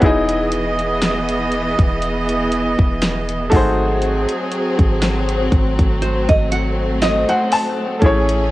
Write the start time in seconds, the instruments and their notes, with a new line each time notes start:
Already playing: string section G#4, grand piano C#5
0.00 808-style bass E1, string section E3 B3 D#5, grand piano B3 D#4 E4, synth pluck F#4, kick, closed hi-hat
0.04 grand piano G#4 D#5
0.29 closed hi-hat
0.52 closed hi-hat
0.79 closed hi-hat
1.02 snare, closed hi-hat
1.29 closed hi-hat
1.52 closed hi-hat
1.79 808-style bass E1, kick, closed hi-hat
2.02 closed hi-hat
2.29 closed hi-hat
2.52 closed hi-hat
2.79 808-style bass E1, kick
3.02 snare, closed hi-hat
3.29 closed hi-hat
3.50 808-style bass G#1, string section F#3 C4 G#4, grand piano A3 D#4 F#4, kick, open hi-hat
3.54 grand piano G#4 C5
4.02 closed hi-hat
4.29 closed hi-hat
4.52 closed hi-hat
4.79 808-style bass G#1, kick, closed hi-hat
5.02 snare, closed hi-hat
5.29 closed hi-hat
5.52 808-style bass G#1, string section A3, kick, closed hi-hat
5.79 808-style bass G#1, kick, closed hi-hat
6.02 nylon-string guitar C5, closed hi-hat
6.29 808-style bass G#1, nylon-string guitar D#5, kick, closed hi-hat
6.52 synth pluck F#4, nylon-string guitar F#5, closed hi-hat
7.02 nylon-string guitar D#5, grand piano D#5, snare, closed hi-hat
7.29 nylon-string guitar C5, grand piano F#5, closed hi-hat
7.52 grand piano A5, open hi-hat
7.99 808-style bass A1, grand piano A3 C#4 E4, string section C#4 G#4, kick, closed hi-hat
8.04 grand piano G#4 C#5
8.29 closed hi-hat